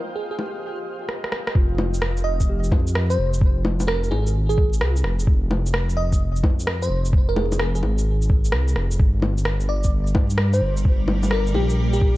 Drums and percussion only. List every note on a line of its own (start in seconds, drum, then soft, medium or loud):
0.39 low bongo soft
1.09 cross-stick medium
1.24 cross-stick medium
1.32 cross-stick medium
1.47 cross-stick medium
1.55 kick loud
1.78 low bongo medium
1.94 shaker medium
2.02 cross-stick loud
2.17 shaker soft
2.40 kick medium
2.40 shaker medium
2.64 shaker soft
2.72 kick loud
2.72 low bongo medium
2.87 shaker medium
2.95 cross-stick loud
3.10 shaker soft
3.34 shaker medium
3.41 kick loud
3.65 low bongo medium
3.80 low bongo soft
3.80 shaker medium
3.88 cross-stick loud
4.04 shaker soft
4.12 low bongo soft
4.27 shaker medium
4.50 shaker soft
4.58 kick loud
4.73 shaker medium
4.81 cross-stick loud
4.97 shaker soft
5.04 cross-stick medium
5.20 shaker medium
5.27 kick loud
5.51 low bongo medium
5.66 shaker medium
5.74 cross-stick loud
5.90 shaker soft
6.12 kick medium
6.12 shaker medium
6.36 shaker soft
6.43 kick loud
6.43 low bongo medium
6.60 shaker medium
6.67 cross-stick loud
6.83 shaker soft
7.05 shaker medium
7.13 kick loud
7.36 low bongo soft
7.52 low bongo soft
7.52 shaker medium
7.59 cross-stick loud
7.75 shaker soft
7.83 low bongo soft
7.98 shaker medium
8.22 shaker soft
8.30 kick loud
8.45 shaker medium
8.52 cross-stick loud
8.68 shaker soft
8.76 cross-stick medium
8.91 shaker medium
9.00 kick loud
9.22 low bongo medium
9.38 shaker medium
9.45 cross-stick loud
9.60 shaker soft
9.84 kick medium
9.84 shaker medium
10.07 shaker soft
10.15 kick loud
10.15 low bongo medium
10.30 shaker medium
10.38 cross-stick loud
10.53 shaker soft
10.77 shaker medium
10.85 kick loud
11.08 low bongo medium
11.23 low bongo soft
11.23 shaker medium
11.31 cross-stick loud
11.47 shaker soft
11.54 low bongo soft
11.70 shaker medium
11.93 shaker soft
12.01 kick loud